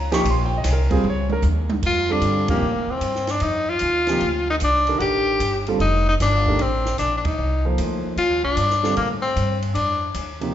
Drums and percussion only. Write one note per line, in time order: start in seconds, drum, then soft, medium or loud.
0.12 snare medium
0.12 ride medium
0.25 ride medium
0.64 snare soft
0.64 hi-hat pedal medium
0.64 ride medium
0.91 kick medium
0.91 ride medium
1.04 high tom medium
1.30 high tom medium
1.42 hi-hat pedal medium
1.42 high tom medium
1.70 high tom loud
1.83 kick medium
1.83 crash medium
2.22 hi-hat pedal soft
2.22 ride medium
2.48 kick medium
2.48 ride medium
3.01 hi-hat pedal medium
3.01 ride medium
3.15 snare soft
3.27 snare soft
3.27 ride soft
3.40 ride medium
3.79 hi-hat pedal soft
3.79 ride medium
4.07 snare soft
4.07 ride soft
4.20 ride medium
4.60 hi-hat pedal medium
4.60 ride medium
4.87 ride soft
5.00 ride medium
5.40 hi-hat pedal soft
5.40 ride medium
5.67 ride soft
5.80 ride medium
6.20 snare soft
6.20 hi-hat pedal medium
6.20 ride medium
6.46 kick medium
6.59 ride medium
6.85 snare soft
6.98 snare soft
6.98 hi-hat pedal medium
6.98 ride medium
7.25 kick medium
7.25 ride medium
7.78 hi-hat pedal medium
7.78 ride medium
8.17 ride medium
8.57 hi-hat pedal medium
8.57 ride medium
8.70 snare soft
8.84 snare soft
8.97 ride medium
9.37 hi-hat pedal soft
9.37 ride medium
9.62 ride soft
9.75 ride medium
10.14 hi-hat pedal soft
10.14 ride medium
10.41 ride soft